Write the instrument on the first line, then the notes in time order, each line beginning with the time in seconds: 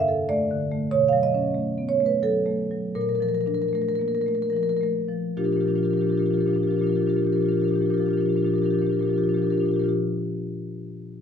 marimba
Already playing: G2
0.00 E5
0.08 A4
0.29 A3 D5
0.51 D3
0.72 A3
0.91 B2 C#5
1.08 F5
1.13 F#3
1.23 D#5
1.34 C#4
1.55 A3
1.78 B3
1.89 C#5
2.00 A3
2.06 B4
2.23 F#3 A4
2.46 A3
2.71 F#3
2.95 A#2 A#4
3.01 A#4
3.09 A#4
3.15 A#4
3.20 F3 A#4
3.29 A#4
3.34 A#4
3.41 A#4
3.46 D4 A#4
3.55 A#4
3.62 A#4
3.68 A#4
3.73 A3 A#4
3.82 A#4
3.88 A#4
3.95 A#3 A#4
4.01 A#4
4.08 A#4
4.15 A#4
4.21 A#4
4.26 A3 A#4
4.35 A#4
4.42 A#4
4.50 F3 A#4
4.57 A#4
4.63 A#4
4.69 A#4
4.77 A#4
4.81 A3 A#4
5.08 F3
5.37 A#2 F3 D4 F4 G4 A#4
5.44 A#2 F3 D4 F4 G4 A#4
5.52 F3 D4 F4 G4 A#4
5.56 A#2 A#4
5.60 D4 F4 G4
5.66 A#2 F3 D4 G4 A#4
5.70 F4
5.75 A#2 F3 D4 F4 G4 A#4
5.83 A#2 F3 D4 F4 G4 A#4
5.90 A#2 F3 D4 F4 G4 A#4
5.97 D4 F4 A#4
6.01 A#2 F3 G4 A#4
6.07 A#2 D4 F4 G4
6.12 F3 D4 A#4
6.17 A#2 F3 F4 G4 A#4
6.23 D4 F4 G4 A#4
6.28 A#2 F3 D4
6.33 F4 G4 A#4
6.38 A#2 F3 D4 G4 A#4
6.42 D4 F4
6.46 A#2 F3 G4 A#4
6.51 D4 F4
6.55 A#2 F3 G4 A#4
6.59 D4 F4 G4
6.63 A#2 F4 A#4
6.68 F3 D4 G4 A#4
6.72 A#2 D4 F4
6.77 A#2 F3 G4 A#4
6.82 D4 F4
6.87 A#2 F3 F4 G4 A#4
6.92 D4 G4 A#4
6.97 A#2 F3 D4 F4
7.01 G4 A#4
7.06 A#2 F3 D4 F4 G4 A#4
7.13 A#2 F3 D4 F4 A#4
7.18 G4
7.22 A#2 F3 D4 F4 A#4
7.27 F4 G4
7.32 A#2 F3 D4 G4 A#4
7.38 F3 D4 F4 A#4
7.43 A#2 F4 G4
7.48 F3 D4 G4 A#4
7.53 A#2 D4 F4 A#4
7.60 A#2 F3 F4 G4 A#4
7.65 D4 G4
7.69 A#2 F3 F4 A#4
7.74 D4 F4 G4
7.79 A#2 F3 D4 G4 A#4
7.86 F4 A#4
7.90 A#2 F3 D4 G4 A#4
7.94 D4 F4 G4
8.00 A#2 F3 F4 A#4
8.06 A#2 F3 D4 G4 A#4
8.11 D4 F4 G4
8.17 A#2 F3 D4 F4 A#4
8.21 G4 A#4
8.26 A#2 F3 D4 F4 G4
8.33 A#2 F3 D4 F4 A#4
8.38 G4 A#4
8.43 A#2 F3 D4 F4 G4
8.47 F4 A#4
8.52 A#2 F3 D4 G4 A#4
8.58 D4 F4
8.62 A#2 F3 D4 F4 G4 A#4
8.70 A#2 F3 D4 G4 A#4
8.75 F4 G4 A#4
8.80 A#2 F3 D4 F4
8.85 G4 A#4
8.89 F3 D4 F4 A#4
8.94 D4 G4
8.99 A#2 F3 F4 G4 A#4
9.05 D4 F4 A#4
9.09 A#2 F3 D4 G4
9.14 A#2 F4 G4 A#4
9.19 F3 D4 A#4
9.24 A#2 F4 G4
9.29 F3 D4 F4 A#4
9.34 A#2 F3 D4 G4 A#4
9.39 F4 G4
9.43 A#2 D4 F4 A#4
9.48 F3 G4 A#4
9.52 A#2 D4 F4
9.57 F3 D4 F4 G4 A#4
9.62 A#2 A#4
9.66 F3 D4 F4 G4
9.71 A#2 G4 A#4
9.76 A#2 F3 D4 F4 A#4
9.81 D4 F4 G4
9.86 A#2 F3 G4 A#4